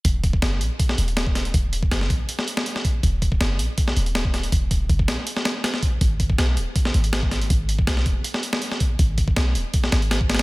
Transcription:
<<
  \new Staff \with { instrumentName = "808-style bass" } { \clef bass \time 4/4 \key ees \minor \tempo 4 = 161 ees,,4 ges,,8 bes,,8 r8 ees,,4. | ees,,4 ges,,8 bes,,8 r2 | ees,,4 ges,,8 bes,,8 r8 ees,,4. | ees,,4 ges,,8 bes,,8 r2 |
aes,,4 ces,8 ees,,8 r8 aes,,4. | aes,,4 ces,8 ees,,8 r2 | aes,,4 ces,8 ees,,8 r8 aes,,4. | }
  \new DrumStaff \with { instrumentName = "Drums" } \drummode { \time 4/4 <hh bd>8 <hh bd>16 bd16 <hh sn>8 hh8 <hh bd>16 sn16 hh16 hh16 <hh sn>16 bd16 <hh sn>16 hh16 | <hh bd>8 hh16 bd16 <hh sn>16 sn16 <hh bd>8 hh16 sn16 hh16 sn16 hh16 sn16 <hh bd>8 | <hh bd>8 <hh bd>16 bd16 <hh sn>8 hh8 <hh bd>16 sn16 hh16 hh16 <hh sn>16 bd16 <hh sn>16 hh16 | <hh bd>8 <hh bd>8 <hh bd>16 bd16 <hh sn>8 hh16 sn16 <hh sn>8 <hh sn>16 sn16 <hh bd>8 |
<hh bd>8 <hh bd>16 bd16 <hh sn>8 hh8 <hh bd>16 sn16 hh16 hh16 <hh sn>16 bd16 <hh sn>16 hh16 | <hh bd>8 hh16 bd16 <hh sn>16 sn16 <hh bd>8 hh16 sn16 hh16 sn16 hh16 sn16 <hh bd>8 | <hh bd>8 <hh bd>16 bd16 <hh sn>8 hh8 <hh bd>16 sn16 <hh sn>16 hh16 <hh sn>16 bd16 <hh sn>32 <hh sn>32 <hh sn>16 | }
>>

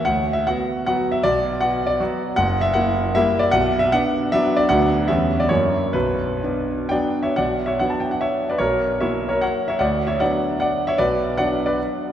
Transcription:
<<
  \new Staff \with { instrumentName = "Grand piano" } { \time 3/4 \key b \minor \tempo 4 = 151 \tuplet 3/2 { fis''4 e''8 } fis''4 \tuplet 3/2 { fis''4 e''8 } | d''4 \tuplet 3/2 { fis''4 d''8 } r4 | \tuplet 3/2 { fis''4 e''8 } fis''4 \tuplet 3/2 { e''4 d''8 } | \tuplet 3/2 { fis''4 e''8 } fis''4 \tuplet 3/2 { e''4 d''8 } |
fis''4 e''8. d''16 cis''4 | b'2 \tuplet 3/2 { <d'' g''>4 <cis'' e''>8 } | \tuplet 3/2 { <d'' fis''>4 <cis'' e''>8 } fis''16 a''16 g''16 fis''16 \tuplet 3/2 { <cis'' e''>4 <b' d''>8 } | <ais' cis''>4 \tuplet 3/2 { <cis'' e''>4 <ais' cis''>8 <cis'' fis''>4 <cis'' e''>8 } |
\tuplet 3/2 { <d'' fis''>4 <cis'' e''>8 } <d'' fis''>4 \tuplet 3/2 { <d'' fis''>4 <cis'' e''>8 } | <b' d''>4 \tuplet 3/2 { <d'' fis''>4 <b' d''>8 } r4 | }
  \new Staff \with { instrumentName = "Grand piano" } { \time 3/4 \key b \minor d,4 <b fis'>4 <fis b fis'>4 | b,,4 <b fis'>4 <fis b fis'>4 | fis,,4 <ais e'>4 <g ais e'>4 | b,,4 <b d'>4 <fis b d'>4 |
<d, fis b d'>4 <e, g b cis'>4 <fis, fis ais e'>4 | b,,4 <b d'>4 <fis b d'>4 | b,,4 <fis b d'>2 | b,,4 <fis ais e'>2 |
d,4 <fis b d'>2 | b,,4 <fis b d'>2 | }
>>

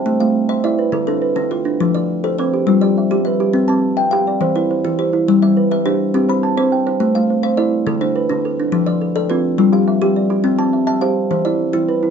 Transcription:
<<
  \new Staff \with { instrumentName = "Kalimba" } { \time 12/8 \key g \mixolydian \tempo 4. = 139 << { a''8 f''4 e''8 d''4. a'4. b'4~ | b'8 d''4 c''8 b'4. d''4. e''4~ | e''8 a''4 g''8 f''4. b'4. c''4~ | c''8 e''4 e''8 c''4. b''4. r4 |
r8 f''4 f''8 d''4. c''4. r4 | r8 d''4 d''8 b'4. f''4. r4 | r8 a''4 a''8 f''4. d''4. r4 | } \\ { a4 r8 c''4 r8 d4 r8 d'4 r8 | f4 r8 a'4 r8 g4 r8 g'4 r8 | c'4 r8 e''4 r8 e4 r8 e'4 r8 | g4 r8 b'4 r8 c'4 r8 c''4 r8 |
a4 r8 c''4 r8 d4 r8 d'4 r8 | f4 r8 a'4 r8 g4 r8 g'4 r8 | c'4 r8 e''4 r8 e4 r8 e'4 r8 | } >> }
  \new Staff \with { instrumentName = "Kalimba" } { \time 12/8 \key g \mixolydian << { e''8 r4. e''8 b'4 d'8 b'4 f'4~ | f'8 r4. c''8 g'4 g'8 e''4 b'4~ | b'8 r4. g''8 d''4 e'8 c''4 g'4~ | g'8 r8 b'4 g'4. c''8 a''4 g''4~ |
g''8 r8 c''4 a'4. d'8 b'4 a'4~ | a'8 r8 a'4 f'4. g'8 e''4 d''4~ | d''8 r8 e''4 c''4. e'4. b'4 | } \\ { c''8 a4 r8 e'4 a'8 r4 d4 d'8~ | d'8 f4 r8 c'4 f'8 r4 g4 g'8~ | g'8 c'4 r8 g'4 c''8 r4 e4 e'8~ | e'8 g4 r8 d'4 g'8 r4 c'4 c''8~ |
c''8 a4 r8 e'4 a'8 r4 d4 d'8~ | d'8 f4 r8 c'4 f'8 r4 g4 g'8~ | g'8 c'4 r8 g'4 c''8 r4 e4 e'8 | } >> }
>>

